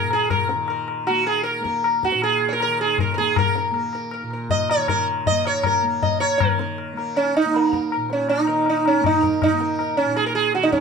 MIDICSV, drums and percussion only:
0, 0, Header, 1, 2, 480
1, 0, Start_track
1, 0, Tempo, 381437
1, 394, Time_signature, 4, 2, 24, 8
1, 7591, Tempo, 375704
1, 13689, End_track
2, 0, Start_track
2, 0, Title_t, "Tabla"
2, 132, Note_on_c, 9, 60, 54
2, 258, Note_off_c, 9, 60, 0
2, 380, Note_on_c, 9, 60, 94
2, 380, Note_on_c, 9, 64, 90
2, 505, Note_off_c, 9, 60, 0
2, 505, Note_off_c, 9, 64, 0
2, 618, Note_on_c, 9, 62, 82
2, 744, Note_off_c, 9, 62, 0
2, 854, Note_on_c, 9, 60, 70
2, 980, Note_off_c, 9, 60, 0
2, 1106, Note_on_c, 9, 60, 57
2, 1231, Note_off_c, 9, 60, 0
2, 1347, Note_on_c, 9, 60, 74
2, 1473, Note_off_c, 9, 60, 0
2, 1592, Note_on_c, 9, 60, 58
2, 1718, Note_off_c, 9, 60, 0
2, 1828, Note_on_c, 9, 60, 69
2, 1954, Note_off_c, 9, 60, 0
2, 2078, Note_on_c, 9, 37, 58
2, 2204, Note_off_c, 9, 37, 0
2, 2318, Note_on_c, 9, 60, 79
2, 2444, Note_off_c, 9, 60, 0
2, 2558, Note_on_c, 9, 37, 61
2, 2669, Note_on_c, 9, 62, 55
2, 2683, Note_off_c, 9, 37, 0
2, 2794, Note_on_c, 9, 60, 67
2, 2795, Note_off_c, 9, 62, 0
2, 2920, Note_off_c, 9, 60, 0
2, 3034, Note_on_c, 9, 60, 58
2, 3160, Note_off_c, 9, 60, 0
2, 3275, Note_on_c, 9, 60, 69
2, 3401, Note_off_c, 9, 60, 0
2, 3511, Note_on_c, 9, 60, 59
2, 3637, Note_off_c, 9, 60, 0
2, 3753, Note_on_c, 9, 60, 68
2, 3753, Note_on_c, 9, 64, 68
2, 3879, Note_off_c, 9, 60, 0
2, 3879, Note_off_c, 9, 64, 0
2, 3993, Note_on_c, 9, 62, 58
2, 4118, Note_off_c, 9, 62, 0
2, 4232, Note_on_c, 9, 60, 91
2, 4232, Note_on_c, 9, 64, 86
2, 4358, Note_off_c, 9, 60, 0
2, 4358, Note_off_c, 9, 64, 0
2, 4473, Note_on_c, 9, 62, 77
2, 4599, Note_off_c, 9, 62, 0
2, 4706, Note_on_c, 9, 60, 69
2, 4831, Note_off_c, 9, 60, 0
2, 4943, Note_on_c, 9, 60, 58
2, 5069, Note_off_c, 9, 60, 0
2, 5176, Note_on_c, 9, 60, 75
2, 5302, Note_off_c, 9, 60, 0
2, 5420, Note_on_c, 9, 60, 57
2, 5546, Note_off_c, 9, 60, 0
2, 5659, Note_on_c, 9, 63, 71
2, 5659, Note_on_c, 9, 64, 59
2, 5784, Note_off_c, 9, 63, 0
2, 5784, Note_off_c, 9, 64, 0
2, 5908, Note_on_c, 9, 60, 70
2, 6034, Note_off_c, 9, 60, 0
2, 6144, Note_on_c, 9, 60, 94
2, 6144, Note_on_c, 9, 64, 77
2, 6270, Note_off_c, 9, 60, 0
2, 6270, Note_off_c, 9, 64, 0
2, 6621, Note_on_c, 9, 63, 58
2, 6621, Note_on_c, 9, 64, 57
2, 6747, Note_off_c, 9, 63, 0
2, 6747, Note_off_c, 9, 64, 0
2, 6863, Note_on_c, 9, 60, 76
2, 6989, Note_off_c, 9, 60, 0
2, 7091, Note_on_c, 9, 60, 90
2, 7091, Note_on_c, 9, 64, 75
2, 7217, Note_off_c, 9, 60, 0
2, 7217, Note_off_c, 9, 64, 0
2, 7581, Note_on_c, 9, 63, 75
2, 7581, Note_on_c, 9, 64, 63
2, 7708, Note_off_c, 9, 63, 0
2, 7708, Note_off_c, 9, 64, 0
2, 7821, Note_on_c, 9, 60, 70
2, 7948, Note_off_c, 9, 60, 0
2, 8066, Note_on_c, 9, 60, 101
2, 8066, Note_on_c, 9, 64, 88
2, 8194, Note_off_c, 9, 60, 0
2, 8194, Note_off_c, 9, 64, 0
2, 8306, Note_on_c, 9, 62, 78
2, 8434, Note_off_c, 9, 62, 0
2, 8550, Note_on_c, 9, 60, 65
2, 8677, Note_off_c, 9, 60, 0
2, 8794, Note_on_c, 9, 60, 54
2, 8922, Note_off_c, 9, 60, 0
2, 9035, Note_on_c, 9, 60, 67
2, 9163, Note_off_c, 9, 60, 0
2, 9275, Note_on_c, 9, 60, 55
2, 9403, Note_off_c, 9, 60, 0
2, 9516, Note_on_c, 9, 60, 64
2, 9644, Note_off_c, 9, 60, 0
2, 9759, Note_on_c, 9, 37, 53
2, 9887, Note_off_c, 9, 37, 0
2, 10004, Note_on_c, 9, 60, 69
2, 10132, Note_off_c, 9, 60, 0
2, 10233, Note_on_c, 9, 62, 58
2, 10361, Note_off_c, 9, 62, 0
2, 10469, Note_on_c, 9, 60, 66
2, 10597, Note_off_c, 9, 60, 0
2, 10712, Note_on_c, 9, 60, 57
2, 10840, Note_off_c, 9, 60, 0
2, 10948, Note_on_c, 9, 60, 65
2, 11076, Note_off_c, 9, 60, 0
2, 11199, Note_on_c, 9, 60, 60
2, 11326, Note_off_c, 9, 60, 0
2, 11433, Note_on_c, 9, 60, 71
2, 11433, Note_on_c, 9, 64, 64
2, 11561, Note_off_c, 9, 60, 0
2, 11561, Note_off_c, 9, 64, 0
2, 11676, Note_on_c, 9, 64, 52
2, 11804, Note_off_c, 9, 64, 0
2, 11917, Note_on_c, 9, 60, 95
2, 11917, Note_on_c, 9, 64, 87
2, 12045, Note_off_c, 9, 60, 0
2, 12045, Note_off_c, 9, 64, 0
2, 12153, Note_on_c, 9, 62, 78
2, 12281, Note_off_c, 9, 62, 0
2, 12390, Note_on_c, 9, 60, 65
2, 12518, Note_off_c, 9, 60, 0
2, 12633, Note_on_c, 9, 60, 60
2, 12761, Note_off_c, 9, 60, 0
2, 12865, Note_on_c, 9, 60, 73
2, 12993, Note_off_c, 9, 60, 0
2, 13117, Note_on_c, 9, 60, 63
2, 13245, Note_off_c, 9, 60, 0
2, 13358, Note_on_c, 9, 62, 73
2, 13475, Note_off_c, 9, 62, 0
2, 13475, Note_on_c, 9, 62, 59
2, 13588, Note_on_c, 9, 37, 54
2, 13603, Note_off_c, 9, 62, 0
2, 13689, Note_off_c, 9, 37, 0
2, 13689, End_track
0, 0, End_of_file